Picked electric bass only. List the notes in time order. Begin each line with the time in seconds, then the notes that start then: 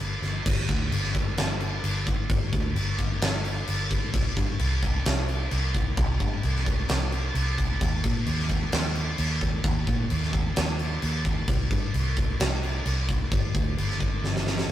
0.00 G1
0.22 G1
0.46 G1
0.69 D2
0.91 G1
1.38 G1
1.84 G1
2.30 G1
2.53 D2
2.75 G1
3.22 G1
3.69 G1
4.14 C2
4.37 G2
4.60 C2
5.06 C2
5.52 C2
5.98 C2
6.21 G2
6.44 C2
6.89 C2
7.35 C2
7.81 D#2
8.04 A#2
8.27 D#2
8.73 D#2
9.19 D#2
9.64 D#2
9.87 A#2
10.11 D#2
10.57 D#2
11.03 D#2
11.48 C2
11.71 G2
11.94 C2
12.40 C2
12.86 C2
13.32 G1
13.55 D2
13.78 G1
14.22 G1
14.68 G1